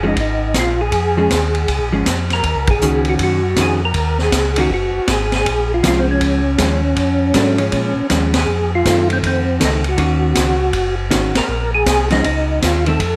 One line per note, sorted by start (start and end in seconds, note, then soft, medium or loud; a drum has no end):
0.00 0.14 F#1 medium
0.00 0.15 F3 medium
0.00 0.15 G#3 medium
0.00 0.16 C#4 medium
0.08 0.18 D#4 medium
0.16 0.53 G#1 medium
0.16 kick soft
0.16 ride medium
0.20 0.57 D#4 medium
0.54 0.91 A#1 medium
0.54 kick soft
0.54 snare medium
0.54 hi-hat pedal medium
0.54 ride medium
0.59 0.81 F4 medium
0.81 1.89 G#4 medium
0.92 1.28 F2 medium
0.92 kick soft
0.92 ride soft
1.17 1.29 F3 medium
1.17 1.29 G#3 medium
1.17 1.29 C#4 medium
1.30 1.66 D#2 medium
1.30 kick soft
1.30 snare medium
1.30 hi-hat pedal soft
1.30 ride medium
1.55 ride soft
1.68 1.80 C#2 medium
1.68 kick soft
1.68 ride medium
1.79 1.92 A#1 soft
1.91 2.03 G#1 medium
1.91 2.04 F3 medium
1.91 2.05 G#3 medium
1.91 2.05 C#4 medium
2.06 2.42 F2 medium
2.06 kick soft
2.06 snare medium
2.06 hi-hat pedal medium
2.06 ride medium
2.30 2.70 A#4 loud
2.30 snare soft
2.30 ride soft
2.44 2.56 D#2 medium
2.44 kick soft
2.44 ride medium
2.55 2.68 C#2 soft
2.67 2.79 A#1 medium
2.67 3.08 G#4 loud
2.67 kick medium
2.67 ride medium
2.79 3.17 C#2 medium
2.79 3.39 D#3 medium
2.79 3.39 A#3 medium
2.79 3.39 C#4 medium
2.79 hi-hat pedal medium
2.84 3.39 F#4 medium
3.05 ride soft
3.09 3.15 F#4 medium
3.19 3.55 F#2 medium
3.19 kick soft
3.19 ride medium
3.23 3.60 F#4 medium
3.56 3.93 F2 medium
3.56 3.79 D#3 soft
3.56 3.79 A#3 soft
3.56 3.79 C#4 medium
3.56 3.79 F#4 medium
3.56 kick soft
3.56 snare medium
3.56 hi-hat pedal soft
3.56 ride medium
3.62 3.81 G#4 medium
3.85 4.22 A#4 medium
3.94 4.31 D#2 medium
3.94 kick soft
3.94 ride medium
4.18 snare soft
4.23 4.59 G#4 medium
4.32 4.68 C#2 medium
4.32 kick soft
4.32 snare medium
4.32 hi-hat pedal medium
4.32 ride medium
4.56 4.69 D#3 medium
4.56 4.69 A#3 medium
4.56 4.69 C#4 medium
4.56 4.69 F#4 medium
4.56 ride medium
4.60 4.71 F#4 medium
4.70 4.91 F#1 medium
4.70 5.10 F#4 medium
4.70 kick soft
4.93 5.00 F#1 soft
5.07 5.44 G#1 medium
5.07 kick soft
5.07 snare medium
5.07 hi-hat pedal medium
5.07 ride medium
5.12 5.34 G#4 medium
5.32 snare soft
5.32 ride soft
5.36 5.72 G#4 medium
5.46 5.82 A#1 medium
5.46 kick soft
5.46 ride medium
5.74 5.84 F4 medium
5.83 6.19 C2 medium
5.83 6.40 F3 medium
5.83 6.40 G#3 medium
5.83 6.41 C#4 medium
5.83 kick soft
5.83 snare medium
5.83 hi-hat pedal medium
5.83 ride medium
5.88 6.01 F4 medium
5.99 6.07 C4 medium
6.11 8.07 C#4 medium
6.20 6.57 C#2 medium
6.20 kick soft
6.20 ride medium
6.58 6.95 D#2 medium
6.58 6.80 F3 medium
6.58 6.80 G#3 soft
6.58 6.80 C#4 medium
6.58 kick soft
6.58 snare medium
6.58 hi-hat pedal soft
6.58 ride medium
6.96 7.33 F2 medium
6.96 kick soft
6.96 ride medium
7.34 7.71 G#2 medium
7.34 7.56 F#3 medium
7.34 7.56 A3 medium
7.34 7.57 D4 medium
7.34 kick soft
7.34 snare medium
7.34 hi-hat pedal soft
7.34 ride medium
7.58 7.91 F3 medium
7.58 7.92 G#3 medium
7.58 7.91 C#4 medium
7.58 ride soft
7.71 7.94 A#2 medium
7.71 kick soft
7.71 ride medium
7.96 8.02 A#2 soft
8.10 8.46 D#2 medium
8.10 8.31 F3 soft
8.10 8.31 G#3 medium
8.10 8.31 C#4 medium
8.10 kick soft
8.10 snare medium
8.10 hi-hat pedal medium
8.10 ride medium
8.34 snare medium
8.34 ride medium
8.38 8.71 G#4 medium
8.47 8.84 F2 medium
8.75 9.08 F4 medium
8.85 9.21 F#2 medium
8.85 9.42 D#3 soft
8.85 9.42 A3 medium
8.85 9.43 C4 medium
8.85 kick soft
8.85 snare medium
8.85 hi-hat pedal medium
8.85 ride medium
9.10 9.18 C4 medium
9.10 ride soft
9.23 9.59 F2 medium
9.23 9.60 C4 medium
9.23 kick soft
9.23 ride medium
9.60 9.97 C#2 medium
9.60 9.82 D#3 medium
9.60 9.82 A3 medium
9.60 9.82 C4 medium
9.60 kick soft
9.60 snare medium
9.60 hi-hat pedal soft
9.60 ride medium
9.65 9.75 D#4 medium
9.84 ride soft
9.88 10.95 F#4 medium
9.97 10.34 D#2 medium
9.97 10.54 D#3 soft
9.97 10.55 A#3 medium
9.97 10.55 C#4 medium
9.97 10.55 F#4 medium
9.97 kick soft
9.97 ride medium
10.35 10.72 C#2 medium
10.35 kick soft
10.35 snare medium
10.35 hi-hat pedal medium
10.35 ride medium
10.73 11.09 F#1 medium
10.73 kick soft
10.73 ride medium
11.11 11.33 G#1 medium
11.11 11.32 D#3 medium
11.11 11.32 A#3 medium
11.11 11.33 C#4 medium
11.11 11.33 F#4 medium
11.11 kick soft
11.11 snare medium
11.11 hi-hat pedal soft
11.11 ride medium
11.34 11.41 G#1 soft
11.34 11.71 A#4 loud
11.34 snare medium
11.34 ride medium
11.48 11.85 A#1 medium
11.75 12.08 G#4 loud
11.86 12.22 C2 medium
11.86 kick soft
11.86 snare medium
11.86 hi-hat pedal medium
11.86 ride medium
12.10 12.23 F3 medium
12.10 12.23 G#3 medium
12.10 12.24 C#4 medium
12.10 12.24 D#4 medium
12.10 snare soft
12.10 ride soft
12.24 12.60 C#2 medium
12.24 12.63 D#4 medium
12.24 kick soft
12.24 ride medium
12.62 12.98 D#2 medium
12.62 12.85 F4 medium
12.62 kick soft
12.62 snare medium
12.62 hi-hat pedal medium
12.62 ride medium
12.86 12.98 D#3 medium
12.86 12.99 A3 medium
12.86 12.99 C4 medium
12.86 13.16 A4 medium
12.86 ride soft
12.99 13.16 F2 medium
12.99 kick soft
12.99 ride medium